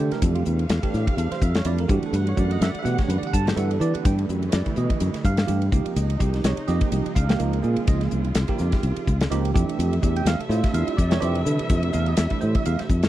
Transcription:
Already playing: C3 E3 G3 A3 D4 E4 C5
0.00 G4
0.11 A#4, muted fretless electric bass stroke, snare, ride
0.22 F2 A4 F5, kick, hi-hat pedal, ride
0.35 F4, ride
0.45 E2, hi-hat pedal
0.59 ride
0.69 E2, snare, hi-hat pedal, ride
0.82 E3 A3 D4 G4, muted fretless electric bass stroke, kick, ride
0.94 A2, snare, hi-hat pedal
1.07 kick, ride
1.17 E2 A4, hi-hat pedal, ride
1.32 C5, muted fretless electric bass stroke, snare, ride
1.41 F2 E5, kick, hi-hat pedal
1.55 C#5, snare, ride
1.65 F2 E3 A3 D4 E4 D5, hi-hat pedal, ride
1.78 A#4, ride
1.88 G2 D3 E3 A3 B3 D4 F#4 G4 F#5, kick, hi-hat pedal
2.03 A4, muted fretless electric bass stroke, ride
2.13 G2 B4, hi-hat pedal, ride
2.27 C#5, ride
2.36 F#2 E3 A3 D4 F#4 D5, kick, hi-hat pedal
2.51 D#5, ride
2.61 F#2 E5, snare, hi-hat pedal, ride
2.70 D5
2.75 muted fretless electric bass stroke, ride
2.79 E3 D4 G4 E5
2.83 B2 A3 F#5, snare, hi-hat pedal
2.98 C#5, kick, snare, ride
3.08 F#2 B4, hi-hat pedal, ride
3.18 D5
3.22 muted fretless electric bass stroke, ride
3.27 F#5
3.33 G2 A5, kick, hi-hat pedal
3.45 E3 A3 D4 F#4, snare, ride
3.49 G5
3.56 G2 E3 A3 D4 A4 F#5, hi-hat pedal, ride
3.71 A4, ride
3.79 E3 A3 D4 G4 D5, hi-hat pedal
3.94 F#5, muted fretless electric bass stroke, ride
4.05 G2 G5, kick, hi-hat pedal, ride
4.19 ride
4.29 F#2, hi-hat pedal
4.42 ride
4.49 C#5, snare, hi-hat pedal, ride
4.53 F#2 D5
4.65 D3 E3 A3 E4, muted fretless electric bass stroke, kick, ride
4.76 B2 D#5, hi-hat pedal
4.90 kick, ride
5.00 F#2, hi-hat pedal, ride
5.14 muted fretless electric bass stroke, snare, ride
5.24 G2 F5, kick, hi-hat pedal
5.37 snare, ride
5.46 G2 E3 A3 D4 G4, hi-hat pedal, ride
5.62 ride
5.71 C#2 C#3 F3 G#3 A#3 C4 D#4 G4, kick, hi-hat pedal
5.86 muted fretless electric bass stroke, ride
5.96 C#2 D#5, hi-hat pedal, ride
6.10 ride
6.19 C2 F3 A#3 D#4 G4, kick, hi-hat pedal
6.34 snare, ride
6.44 C2 C#5, snare, hi-hat pedal, ride
6.57 ride
6.67 F2 F3 A#3 D#4 G4 D#5, snare, hi-hat pedal
6.81 kick, ride
6.92 C2, hi-hat pedal, ride
7.06 ride
7.15 C#2 F5, kick, hi-hat pedal
7.28 F3 A#3 D#4 G4, snare, ride
7.38 C#2 F3 A#3 D#4 A#4, hi-hat pedal, ride
7.53 ride
7.62 A#2 F3 A#3 D#4 F4 G#4, hi-hat pedal
7.76 muted fretless electric bass stroke, ride
7.87 C#2 D#5, kick, hi-hat pedal, ride
8.01 snare, ride
8.11 C2, hi-hat pedal
8.24 ride
8.35 C2, snare, hi-hat pedal, ride
8.48 F3 A#3 D#4 G4, muted fretless electric bass stroke, kick, ride
8.58 F2, snare, hi-hat pedal
8.72 kick, snare, ride
8.83 C2, hi-hat pedal, ride
8.96 ride
9.07 C#2, kick, hi-hat pedal
9.21 snare, ride
9.30 C#2 F3 A#3 D#4 G4, hi-hat pedal, ride
9.45 ride
9.54 F2 C3 E3 G3 A3 D4 G4 E5, kick, hi-hat pedal
9.69 ride
9.79 F2, hi-hat pedal, ride
9.93 ride
10.01 E2 E3 A3 D4 G4, kick, hi-hat pedal
10.16 G5, ride
10.25 E2 F5, snare, hi-hat pedal, ride
10.40 A4, muted fretless electric bass stroke, ride
10.49 A2 A3 D4 E4 F4 C5, snare, hi-hat pedal
10.64 E5, kick, snare, ride
10.74 E2 F5, hi-hat pedal, ride
10.87 E5, muted fretless electric bass stroke, ride
10.97 F2 D5, kick, hi-hat pedal
11.10 E3 A3 D4 G4 C#5, snare, ride
11.20 F2 E3 A3 D4 G4 C5, hi-hat pedal, ride
11.35 A4, ride
11.45 D3 E3 A3 D4 E4, hi-hat pedal
11.59 muted fretless electric bass stroke, ride
11.69 F2, kick, hi-hat pedal, ride
11.83 ride
11.93 E2 F5, hi-hat pedal
12.06 D#5, ride
12.17 E2 E5, snare, hi-hat pedal, ride
12.30 E3 A3 D4 E4 G4, kick, ride
12.41 A2 C5, hi-hat pedal
12.55 E5, kick, ride
12.65 E2 F5, hi-hat pedal, ride
12.79 C5, muted fretless electric bass stroke, snare, ride
12.89 F2, kick, hi-hat pedal
13.03 snare, ride

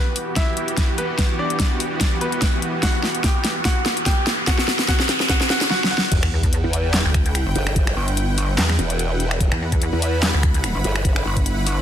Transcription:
Already playing: E3 B3 F#4 G4 B4, riser
0.16 open hi-hat
0.36 E4 E5, kick, snare, closed hi-hat
0.57 closed hi-hat
0.68 closed hi-hat
0.77 kick, snare, closed hi-hat
0.98 B3 B4, closed hi-hat
1.18 kick, snare, closed hi-hat
1.39 D4 D5
1.50 closed hi-hat
1.60 kick, snare, closed hi-hat
1.80 open hi-hat
2.01 kick, snare, closed hi-hat
2.21 B3 B4, closed hi-hat
2.32 closed hi-hat
2.42 kick, snare, closed hi-hat
2.62 closed hi-hat
2.83 F#4 F#5, kick, snare, closed hi-hat
3.03 snare
3.15 closed hi-hat
3.24 G4 G5, kick, snare, closed hi-hat
3.45 snare, open hi-hat
3.65 F#4 F#5, kick, snare, closed hi-hat
3.86 snare, closed hi-hat
3.97 closed hi-hat
4.06 G4 G5, kick, snare, closed hi-hat
4.27 snare, closed hi-hat
4.47 F#4 F#5, kick, snare, closed hi-hat
4.58 snare
4.68 snare
4.79 snare, closed hi-hat
4.88 F#4 F#5, kick, snare, closed hi-hat
5.00 snare
5.09 snare, open hi-hat
5.20 snare
5.29 F#4 F#5, kick, snare, closed hi-hat
5.41 snare
5.50 F#4 F#5, snare, closed hi-hat
5.61 snare, closed hi-hat
5.71 F#4 F#5, snare
5.84 snare
5.91 F#4 F#5
5.98 snare
6.12 E1 E4 B4 F#5 G5, kick, closed hi-hat, crash, sub drop
6.23 E2, finger snap
6.43 kick, closed hi-hat
6.53 closed hi-hat
6.64 E2
6.73 open hi-hat
6.94 snare, clap, closed hi-hat
7.05 D2
7.14 finger snap, kick, closed hi-hat
7.26 closed hi-hat
7.35 finger snap, closed hi-hat
7.46 G1
7.55 G1, closed hi-hat
7.67 finger snap
7.76 kick, closed hi-hat
7.87 finger snap
7.97 G1
8.08 closed hi-hat
8.17 closed hi-hat
8.38 open hi-hat
8.58 E2, snare, clap, closed hi-hat
8.70 finger snap, snare
8.79 E1, closed hi-hat
8.90 closed hi-hat
8.99 closed hi-hat
9.20 closed hi-hat
9.31 finger snap
9.40 E1 B5, kick, closed hi-hat
9.52 E2, finger snap
9.72 kick, closed hi-hat
9.82 closed hi-hat
9.93 E2
10.02 open hi-hat
10.23 snare, clap, closed hi-hat
10.34 D2
10.43 finger snap, kick, closed hi-hat
10.54 closed hi-hat
10.64 finger snap, closed hi-hat
10.75 G1
10.84 G1, closed hi-hat
10.96 finger snap
11.05 kick, closed hi-hat
11.16 finger snap
11.25 G1
11.37 kick, closed hi-hat
11.46 closed hi-hat
11.67 open hi-hat

